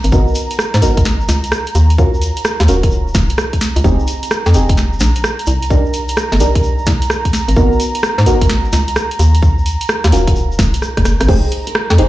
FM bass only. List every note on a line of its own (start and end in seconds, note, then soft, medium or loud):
0.04 0.11 G#1 medium
0.12 0.25 G#1 loud
0.74 0.84 G#2 loud
0.82 1.26 G#1 medium
1.29 1.41 C#2 medium
1.75 2.33 D#2 medium
2.60 2.70 D#2 loud
2.68 3.12 D#1 medium
3.15 3.27 D#1 medium
3.76 3.83 C#2 medium
3.84 3.97 F1 loud
4.46 4.56 F2 loud
4.54 4.98 F1 medium
5.00 5.13 A#1 medium
5.47 6.05 C2 medium
6.32 6.42 G1 loud
6.40 6.84 C2 medium
6.87 6.99 C2 medium
7.48 7.55 G#1 medium
7.57 7.69 G#1 loud
8.18 8.28 G#2 loud
8.26 8.70 G#1 medium
8.73 8.85 C#2 medium
9.19 9.77 D#2 medium
10.04 10.14 D#2 loud
10.12 10.57 D#1 medium
10.59 10.71 D#1 loud
10.97 11.04 F#1 loud
11.05 11.18 F#1 medium
11.20 11.27 G#1 loud
11.28 11.41 F1 loud
11.90 12.00 F2 loud
11.98 12.09 F1 medium